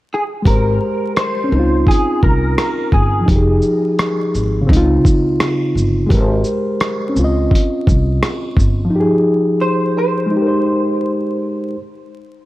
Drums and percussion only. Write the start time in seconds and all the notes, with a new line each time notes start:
0.45 kick, closed hi-hat
1.16 cross-stick, closed hi-hat
1.87 kick
1.91 closed hi-hat
2.23 kick
2.58 cross-stick, closed hi-hat
2.92 kick
3.28 kick, closed hi-hat
3.62 shaker
3.99 cross-stick, closed hi-hat
4.35 shaker
4.69 kick
4.73 closed hi-hat
5.05 kick, shaker
5.40 cross-stick, closed hi-hat
5.77 shaker
6.10 kick, closed hi-hat
6.44 shaker
6.80 cross-stick, closed hi-hat
7.16 shaker
7.51 kick
7.55 closed hi-hat
7.87 kick, shaker
8.23 cross-stick, closed hi-hat
8.57 kick, shaker